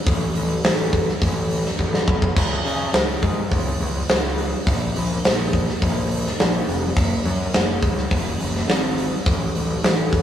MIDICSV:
0, 0, Header, 1, 3, 480
1, 0, Start_track
1, 0, Tempo, 574713
1, 58, Time_signature, 4, 2, 24, 8
1, 8537, End_track
2, 0, Start_track
2, 0, Title_t, "Picked electric bass"
2, 0, Program_c, 0, 34
2, 56, Note_on_c, 0, 33, 92
2, 233, Note_off_c, 0, 33, 0
2, 289, Note_on_c, 0, 33, 75
2, 468, Note_off_c, 0, 33, 0
2, 533, Note_on_c, 0, 33, 82
2, 887, Note_off_c, 0, 33, 0
2, 1019, Note_on_c, 0, 33, 95
2, 1371, Note_off_c, 0, 33, 0
2, 1496, Note_on_c, 0, 33, 91
2, 1673, Note_off_c, 0, 33, 0
2, 1734, Note_on_c, 0, 35, 96
2, 1912, Note_off_c, 0, 35, 0
2, 1974, Note_on_c, 0, 37, 90
2, 2152, Note_off_c, 0, 37, 0
2, 2215, Note_on_c, 0, 49, 87
2, 2393, Note_off_c, 0, 49, 0
2, 2450, Note_on_c, 0, 37, 87
2, 2629, Note_off_c, 0, 37, 0
2, 2696, Note_on_c, 0, 44, 85
2, 2873, Note_off_c, 0, 44, 0
2, 2936, Note_on_c, 0, 37, 101
2, 3113, Note_off_c, 0, 37, 0
2, 3176, Note_on_c, 0, 37, 90
2, 3353, Note_off_c, 0, 37, 0
2, 3419, Note_on_c, 0, 37, 93
2, 3771, Note_off_c, 0, 37, 0
2, 3899, Note_on_c, 0, 34, 95
2, 4075, Note_off_c, 0, 34, 0
2, 4145, Note_on_c, 0, 34, 88
2, 4318, Note_off_c, 0, 34, 0
2, 4385, Note_on_c, 0, 34, 86
2, 4734, Note_off_c, 0, 34, 0
2, 4863, Note_on_c, 0, 34, 105
2, 5213, Note_off_c, 0, 34, 0
2, 5346, Note_on_c, 0, 34, 89
2, 5519, Note_off_c, 0, 34, 0
2, 5582, Note_on_c, 0, 29, 94
2, 5757, Note_off_c, 0, 29, 0
2, 5817, Note_on_c, 0, 30, 102
2, 5994, Note_off_c, 0, 30, 0
2, 6058, Note_on_c, 0, 42, 94
2, 6234, Note_off_c, 0, 42, 0
2, 6303, Note_on_c, 0, 30, 89
2, 6477, Note_off_c, 0, 30, 0
2, 6536, Note_on_c, 0, 37, 86
2, 6713, Note_off_c, 0, 37, 0
2, 6778, Note_on_c, 0, 30, 109
2, 6954, Note_off_c, 0, 30, 0
2, 7012, Note_on_c, 0, 30, 91
2, 7191, Note_off_c, 0, 30, 0
2, 7255, Note_on_c, 0, 32, 102
2, 7609, Note_off_c, 0, 32, 0
2, 7737, Note_on_c, 0, 33, 91
2, 7914, Note_off_c, 0, 33, 0
2, 7975, Note_on_c, 0, 33, 85
2, 8153, Note_off_c, 0, 33, 0
2, 8213, Note_on_c, 0, 33, 88
2, 8537, Note_off_c, 0, 33, 0
2, 8537, End_track
3, 0, Start_track
3, 0, Title_t, "Drums"
3, 55, Note_on_c, 9, 36, 110
3, 57, Note_on_c, 9, 46, 84
3, 139, Note_off_c, 9, 36, 0
3, 140, Note_off_c, 9, 46, 0
3, 294, Note_on_c, 9, 46, 64
3, 378, Note_off_c, 9, 46, 0
3, 534, Note_on_c, 9, 46, 86
3, 540, Note_on_c, 9, 38, 113
3, 617, Note_off_c, 9, 46, 0
3, 624, Note_off_c, 9, 38, 0
3, 776, Note_on_c, 9, 36, 77
3, 778, Note_on_c, 9, 46, 54
3, 860, Note_off_c, 9, 36, 0
3, 861, Note_off_c, 9, 46, 0
3, 908, Note_on_c, 9, 38, 33
3, 991, Note_off_c, 9, 38, 0
3, 1017, Note_on_c, 9, 36, 88
3, 1018, Note_on_c, 9, 46, 79
3, 1100, Note_off_c, 9, 36, 0
3, 1102, Note_off_c, 9, 46, 0
3, 1258, Note_on_c, 9, 46, 64
3, 1341, Note_off_c, 9, 46, 0
3, 1385, Note_on_c, 9, 38, 30
3, 1468, Note_off_c, 9, 38, 0
3, 1495, Note_on_c, 9, 36, 57
3, 1578, Note_off_c, 9, 36, 0
3, 1619, Note_on_c, 9, 38, 63
3, 1703, Note_off_c, 9, 38, 0
3, 1735, Note_on_c, 9, 36, 95
3, 1818, Note_off_c, 9, 36, 0
3, 1856, Note_on_c, 9, 36, 87
3, 1939, Note_off_c, 9, 36, 0
3, 1974, Note_on_c, 9, 49, 102
3, 1975, Note_on_c, 9, 36, 99
3, 2057, Note_off_c, 9, 49, 0
3, 2059, Note_off_c, 9, 36, 0
3, 2217, Note_on_c, 9, 46, 58
3, 2301, Note_off_c, 9, 46, 0
3, 2450, Note_on_c, 9, 46, 80
3, 2457, Note_on_c, 9, 38, 117
3, 2533, Note_off_c, 9, 46, 0
3, 2540, Note_off_c, 9, 38, 0
3, 2693, Note_on_c, 9, 46, 51
3, 2696, Note_on_c, 9, 36, 81
3, 2776, Note_off_c, 9, 46, 0
3, 2779, Note_off_c, 9, 36, 0
3, 2935, Note_on_c, 9, 46, 78
3, 2936, Note_on_c, 9, 36, 83
3, 3019, Note_off_c, 9, 46, 0
3, 3020, Note_off_c, 9, 36, 0
3, 3176, Note_on_c, 9, 46, 57
3, 3259, Note_off_c, 9, 46, 0
3, 3415, Note_on_c, 9, 46, 79
3, 3421, Note_on_c, 9, 38, 105
3, 3498, Note_off_c, 9, 46, 0
3, 3505, Note_off_c, 9, 38, 0
3, 3657, Note_on_c, 9, 46, 58
3, 3741, Note_off_c, 9, 46, 0
3, 3898, Note_on_c, 9, 46, 81
3, 3900, Note_on_c, 9, 36, 104
3, 3981, Note_off_c, 9, 46, 0
3, 3983, Note_off_c, 9, 36, 0
3, 4140, Note_on_c, 9, 46, 61
3, 4224, Note_off_c, 9, 46, 0
3, 4381, Note_on_c, 9, 46, 81
3, 4387, Note_on_c, 9, 38, 113
3, 4464, Note_off_c, 9, 46, 0
3, 4471, Note_off_c, 9, 38, 0
3, 4621, Note_on_c, 9, 36, 75
3, 4625, Note_on_c, 9, 46, 56
3, 4705, Note_off_c, 9, 36, 0
3, 4708, Note_off_c, 9, 46, 0
3, 4749, Note_on_c, 9, 38, 33
3, 4833, Note_off_c, 9, 38, 0
3, 4861, Note_on_c, 9, 36, 84
3, 4862, Note_on_c, 9, 46, 86
3, 4945, Note_off_c, 9, 36, 0
3, 4945, Note_off_c, 9, 46, 0
3, 5104, Note_on_c, 9, 46, 62
3, 5187, Note_off_c, 9, 46, 0
3, 5231, Note_on_c, 9, 38, 32
3, 5314, Note_off_c, 9, 38, 0
3, 5340, Note_on_c, 9, 46, 80
3, 5347, Note_on_c, 9, 38, 105
3, 5423, Note_off_c, 9, 46, 0
3, 5430, Note_off_c, 9, 38, 0
3, 5583, Note_on_c, 9, 46, 64
3, 5666, Note_off_c, 9, 46, 0
3, 5818, Note_on_c, 9, 36, 111
3, 5818, Note_on_c, 9, 46, 84
3, 5901, Note_off_c, 9, 46, 0
3, 5902, Note_off_c, 9, 36, 0
3, 6059, Note_on_c, 9, 46, 59
3, 6143, Note_off_c, 9, 46, 0
3, 6294, Note_on_c, 9, 46, 80
3, 6301, Note_on_c, 9, 38, 108
3, 6378, Note_off_c, 9, 46, 0
3, 6384, Note_off_c, 9, 38, 0
3, 6533, Note_on_c, 9, 46, 53
3, 6536, Note_on_c, 9, 36, 87
3, 6616, Note_off_c, 9, 46, 0
3, 6619, Note_off_c, 9, 36, 0
3, 6661, Note_on_c, 9, 38, 31
3, 6745, Note_off_c, 9, 38, 0
3, 6773, Note_on_c, 9, 46, 80
3, 6775, Note_on_c, 9, 36, 89
3, 6857, Note_off_c, 9, 46, 0
3, 6859, Note_off_c, 9, 36, 0
3, 7019, Note_on_c, 9, 46, 61
3, 7103, Note_off_c, 9, 46, 0
3, 7148, Note_on_c, 9, 38, 29
3, 7232, Note_off_c, 9, 38, 0
3, 7257, Note_on_c, 9, 46, 76
3, 7263, Note_on_c, 9, 38, 107
3, 7340, Note_off_c, 9, 46, 0
3, 7347, Note_off_c, 9, 38, 0
3, 7498, Note_on_c, 9, 46, 64
3, 7582, Note_off_c, 9, 46, 0
3, 7735, Note_on_c, 9, 46, 72
3, 7736, Note_on_c, 9, 36, 113
3, 7818, Note_off_c, 9, 46, 0
3, 7820, Note_off_c, 9, 36, 0
3, 7977, Note_on_c, 9, 46, 59
3, 8061, Note_off_c, 9, 46, 0
3, 8215, Note_on_c, 9, 46, 79
3, 8222, Note_on_c, 9, 38, 118
3, 8299, Note_off_c, 9, 46, 0
3, 8305, Note_off_c, 9, 38, 0
3, 8457, Note_on_c, 9, 46, 51
3, 8458, Note_on_c, 9, 36, 86
3, 8537, Note_off_c, 9, 36, 0
3, 8537, Note_off_c, 9, 46, 0
3, 8537, End_track
0, 0, End_of_file